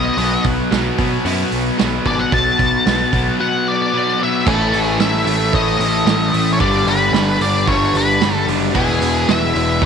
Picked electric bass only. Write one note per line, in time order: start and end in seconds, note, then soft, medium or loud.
0.17 0.35 B1 medium
0.45 0.62 B1 medium
0.71 0.89 B1 loud
0.99 1.16 B2 medium
1.25 1.43 F#2 loud
1.52 1.69 B1 medium
1.81 1.98 B1 medium
2.05 2.23 G#1 medium
2.32 2.50 B1 medium
2.59 2.77 B1 medium
2.86 3.04 B1 medium
3.13 3.30 B1 medium
4.47 4.72 A1 loud
4.74 4.99 A1 medium
5.01 5.25 A1 loud
5.26 5.51 A1 medium
5.53 5.78 A1 medium
5.79 6.05 A1 medium
6.05 6.31 A1 loud
6.33 6.59 A1 medium
6.60 6.85 G1 medium
6.86 7.11 G1 medium
7.12 7.38 G1 medium
7.40 7.65 G1 medium
7.68 7.93 G1 medium
7.94 8.19 G1 medium
8.21 8.46 G1 medium
8.48 8.73 F#1 medium
8.75 9.00 E1 medium
9.01 9.26 E1 medium
9.28 9.53 E1 medium
9.55 9.80 E1 medium
9.81 9.86 E1 medium